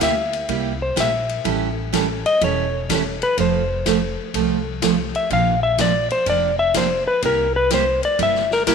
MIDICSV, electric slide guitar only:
0, 0, Header, 1, 2, 480
1, 0, Start_track
1, 0, Key_signature, -1, "major"
1, 0, Tempo, 481155
1, 1452, Time_signature, 4, 2, 24, 8
1, 8727, End_track
2, 0, Start_track
2, 0, Title_t, "Electric slide guitar"
2, 0, Program_c, 0, 29
2, 31, Note_on_c, 0, 76, 84
2, 783, Note_off_c, 0, 76, 0
2, 821, Note_on_c, 0, 72, 63
2, 971, Note_off_c, 0, 72, 0
2, 1001, Note_on_c, 0, 76, 91
2, 1748, Note_off_c, 0, 76, 0
2, 2255, Note_on_c, 0, 75, 98
2, 2408, Note_off_c, 0, 75, 0
2, 2435, Note_on_c, 0, 73, 75
2, 3186, Note_off_c, 0, 73, 0
2, 3223, Note_on_c, 0, 71, 84
2, 3372, Note_off_c, 0, 71, 0
2, 3397, Note_on_c, 0, 72, 72
2, 4147, Note_off_c, 0, 72, 0
2, 5146, Note_on_c, 0, 76, 83
2, 5294, Note_off_c, 0, 76, 0
2, 5319, Note_on_c, 0, 77, 105
2, 5614, Note_off_c, 0, 77, 0
2, 5618, Note_on_c, 0, 76, 91
2, 5770, Note_off_c, 0, 76, 0
2, 5798, Note_on_c, 0, 74, 87
2, 6097, Note_off_c, 0, 74, 0
2, 6103, Note_on_c, 0, 72, 90
2, 6252, Note_off_c, 0, 72, 0
2, 6280, Note_on_c, 0, 74, 89
2, 6573, Note_off_c, 0, 74, 0
2, 6577, Note_on_c, 0, 76, 110
2, 6729, Note_off_c, 0, 76, 0
2, 6757, Note_on_c, 0, 72, 75
2, 7054, Note_off_c, 0, 72, 0
2, 7058, Note_on_c, 0, 71, 91
2, 7210, Note_off_c, 0, 71, 0
2, 7238, Note_on_c, 0, 70, 88
2, 7537, Note_off_c, 0, 70, 0
2, 7544, Note_on_c, 0, 71, 94
2, 7692, Note_off_c, 0, 71, 0
2, 7722, Note_on_c, 0, 72, 85
2, 8019, Note_off_c, 0, 72, 0
2, 8030, Note_on_c, 0, 74, 91
2, 8176, Note_off_c, 0, 74, 0
2, 8208, Note_on_c, 0, 76, 104
2, 8502, Note_off_c, 0, 76, 0
2, 8510, Note_on_c, 0, 70, 95
2, 8600, Note_off_c, 0, 70, 0
2, 8654, Note_on_c, 0, 70, 81
2, 8660, Note_on_c, 0, 64, 62
2, 8727, Note_off_c, 0, 64, 0
2, 8727, Note_off_c, 0, 70, 0
2, 8727, End_track
0, 0, End_of_file